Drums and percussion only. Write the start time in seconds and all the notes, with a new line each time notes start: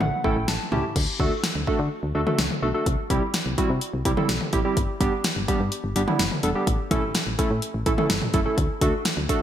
0.01 mid tom
0.24 kick
0.48 snare
0.72 mid tom
0.96 kick, crash
1.20 kick
1.44 snare
1.67 kick
2.27 mid tom
2.39 snare
2.51 mid tom
2.86 kick, closed hi-hat
3.10 kick, closed hi-hat
3.34 snare, closed hi-hat
3.58 kick, closed hi-hat
3.81 closed hi-hat
4.05 kick, closed hi-hat
4.17 mid tom
4.29 snare, closed hi-hat
4.41 mid tom
4.53 kick, closed hi-hat
4.77 kick, closed hi-hat
5.01 kick, closed hi-hat
5.24 snare, closed hi-hat
5.48 kick, closed hi-hat
5.72 closed hi-hat
5.96 closed hi-hat
6.08 mid tom
6.19 snare, closed hi-hat
6.31 mid tom
6.43 closed hi-hat
6.67 kick, closed hi-hat
6.91 kick, closed hi-hat, mid tom
7.15 snare, closed hi-hat
7.39 kick, closed hi-hat
7.62 closed hi-hat
7.86 kick, closed hi-hat
7.98 mid tom
8.10 snare, closed hi-hat
8.22 mid tom
8.34 kick, closed hi-hat
8.58 kick, closed hi-hat
8.81 kick, closed hi-hat
9.05 snare, closed hi-hat
9.29 kick, closed hi-hat